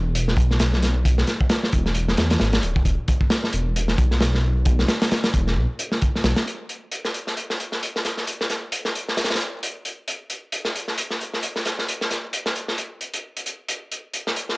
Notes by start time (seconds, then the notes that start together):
Already playing: E1
0.15 closed hi-hat
0.28 snare
0.37 B1, kick, closed hi-hat
0.51 snare
0.60 snare, closed hi-hat
0.73 snare
0.82 snare, closed hi-hat
1.05 kick, closed hi-hat
1.18 snare
1.27 snare, closed hi-hat
1.41 kick
1.49 snare, closed hi-hat
1.63 snare
1.73 E1, kick, closed hi-hat
1.86 snare
1.94 closed hi-hat
2.08 snare
2.17 E2, snare, closed hi-hat
2.30 snare, closed hi-hat
2.40 G#1, snare, closed hi-hat
2.53 snare, closed hi-hat
2.63 D1, closed hi-hat
2.76 kick
2.85 E1, kick, closed hi-hat
3.08 kick, closed hi-hat
3.21 kick
3.30 snare, closed hi-hat
3.44 snare
3.53 E1, closed hi-hat
3.76 closed hi-hat
3.88 snare
3.98 B1, kick, closed hi-hat
4.11 snare
4.21 snare, closed hi-hat
4.35 snare
4.65 kick, closed hi-hat
4.79 snare
4.88 snare, closed hi-hat
5.02 snare, closed hi-hat
5.11 snare, closed hi-hat
5.24 snare, closed hi-hat
5.34 E1, kick, closed hi-hat
5.47 snare
5.56 B1
5.79 closed hi-hat
5.92 snare
6.02 kick, closed hi-hat
6.16 snare
6.24 B1, snare, closed hi-hat
6.36 snare, closed hi-hat
6.47 closed hi-hat
6.69 closed hi-hat
6.92 closed hi-hat
7.05 snare
7.14 closed hi-hat
7.27 snare
7.37 closed hi-hat
7.50 snare
7.60 closed hi-hat
7.72 snare
7.83 closed hi-hat
7.96 snare
8.05 snare, closed hi-hat
8.17 snare
8.27 closed hi-hat
8.41 snare
8.50 snare, closed hi-hat
8.72 closed hi-hat
8.85 snare
8.95 closed hi-hat
9.08 snare
9.17 snare, closed hi-hat
9.24 snare, closed hi-hat
9.30 snare, closed hi-hat
9.35 snare, closed hi-hat
9.40 closed hi-hat
9.63 closed hi-hat
9.85 closed hi-hat
10.08 closed hi-hat
10.30 closed hi-hat
10.52 closed hi-hat
10.65 snare
10.76 closed hi-hat
10.88 snare
10.98 closed hi-hat
11.10 snare
11.21 closed hi-hat
11.34 snare
11.43 closed hi-hat
11.56 snare
11.65 snare, closed hi-hat
11.79 snare
11.89 closed hi-hat
12.01 snare
12.10 snare, closed hi-hat
12.33 closed hi-hat
12.46 snare
12.56 closed hi-hat
12.68 snare
12.78 closed hi-hat
13.01 closed hi-hat
13.14 closed hi-hat
13.37 closed hi-hat
13.46 closed hi-hat
13.68 closed hi-hat
13.92 closed hi-hat
14.14 closed hi-hat
14.27 snare
14.36 closed hi-hat
14.49 snare